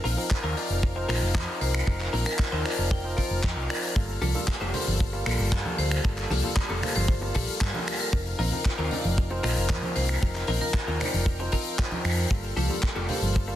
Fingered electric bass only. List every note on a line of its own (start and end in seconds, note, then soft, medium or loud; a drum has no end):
0.05 0.15 A#1 medium
0.44 0.54 D#2 medium
0.70 1.04 F1 medium
1.09 1.19 A#1 medium
1.22 1.36 F1 medium
1.35 1.45 F2 loud
1.61 1.81 C2 loud
1.87 2.07 F1 loud
2.13 2.23 A#1 medium
2.53 2.62 D#2 medium
2.78 3.13 F1 medium
3.31 3.41 F1 medium
3.44 3.54 F2 medium
3.57 3.67 C2 medium
3.96 4.16 G1 medium
4.22 4.32 C2 medium
4.61 4.71 F1 medium
4.87 5.21 G1 medium
5.26 5.36 A#1 medium
5.39 5.53 G1 medium
5.52 5.62 G2 medium
5.78 5.98 D2 loud
6.05 6.24 G1 loud
6.31 6.41 C2 medium
6.70 6.80 F1 medium
6.96 7.30 G1 medium
7.36 7.45 A#1 medium
7.48 muted fingered electric bass stroke soft
7.61 7.71 G2 loud
8.13 8.33 F1 loud
8.39 8.49 A#1 medium
8.79 8.89 D#2 medium
9.05 9.39 F1 medium
9.44 9.54 A#1 medium
9.57 9.71 F1 loud
9.70 9.80 F2 medium
9.96 10.16 C2 loud
10.23 10.42 F1 loud
10.48 10.58 A#1 medium
10.88 10.97 D#2 medium
11.14 11.48 F1 medium
12.05 12.25 F2 medium
12.31 12.51 G1 loud
12.57 12.67 C2 medium
12.96 13.06 F1 medium
13.22 13.56 G1 medium